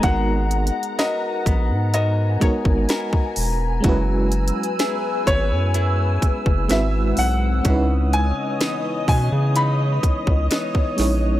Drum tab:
HH |x-----x-x-x-x-----x-----x-----x-----x-----o-----|x-----x-x-x-x-----x-----x-----x-----x-----o-----|x-----x-----x-----o-----x-----x-----x-----o-----|
SD |------------o-----------------------o-----------|------------o-----------------------o-----------|------------o-----------------------o-----o-----|
BD |o-----------------o-----------o--o-----o--------|o-----------------o-----------o--o--------------|o-----------------o-----------o--o-----o--------|